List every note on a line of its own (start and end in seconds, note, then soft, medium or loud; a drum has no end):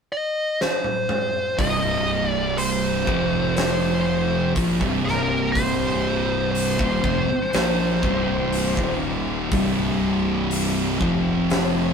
0.12 0.62 D#5 loud
0.61 1.59 C5 medium
0.61 snare medium
0.84 high tom medium
1.09 mid tom medium
1.58 3.03 C1 loud
1.58 3.07 C2 medium
1.58 3.08 G2 loud
1.58 3.08 C3 loud
1.58 2.27 D#5 loud
1.58 kick loud
1.58 open hi-hat medium
2.27 2.61 D5 loud
2.58 3.55 C5 medium
2.58 open hi-hat medium
3.07 4.52 F1 medium
3.07 4.55 F2 medium
3.07 4.55 C3 loud
3.07 4.55 F3 loud
3.07 kick loud
3.56 4.52 C5 medium
3.56 snare loud
3.56 open hi-hat medium
4.56 4.79 A#1 medium
4.56 4.79 A#2 medium
4.56 4.80 F3 loud
4.56 kick loud
4.56 open hi-hat medium
4.81 6.75 C1 medium
4.81 6.77 C2 medium
4.81 6.78 G2 medium
4.81 6.78 C3 loud
4.81 kick loud
5.05 5.51 A#4 medium
5.05 snare soft
5.52 6.50 C5 loud
5.52 kick loud
5.52 open hi-hat medium
6.51 8.97 C5 medium
6.51 open hi-hat medium
6.78 7.03 D#1 medium
6.78 7.02 D#2 medium
6.78 7.02 A#2 medium
6.78 kick loud
7.03 7.27 F1 medium
7.03 7.27 F2 medium
7.03 7.27 C3 loud
7.03 kick loud
7.29 muted distorted electric guitar stroke medium
7.29 muted fingered electric bass stroke soft
7.53 8.00 A#1 loud
7.53 8.02 A#2 medium
7.53 8.02 F3 loud
7.53 8.02 A#3 loud
7.53 snare loud
7.53 open hi-hat medium
8.03 8.74 C1 loud
8.03 8.76 C2 medium
8.03 8.77 G2 medium
8.03 8.77 C3 loud
8.03 kick loud
8.53 open hi-hat medium
8.77 9.48 D#1 loud
8.77 9.51 D#2 medium
8.77 9.51 A#2 medium
8.77 9.52 D#3 loud
8.77 kick loud
9.52 10.97 C1 loud
9.52 11.00 C2 medium
9.52 11.00 G2 loud
9.52 11.00 C3 loud
9.52 kick loud
9.52 open hi-hat medium
10.51 open hi-hat medium
11.01 11.94 F1 medium
11.01 11.94 F2 medium
11.01 11.94 C3 medium
11.01 11.94 F3 loud
11.01 kick loud
11.50 snare loud
11.50 open hi-hat medium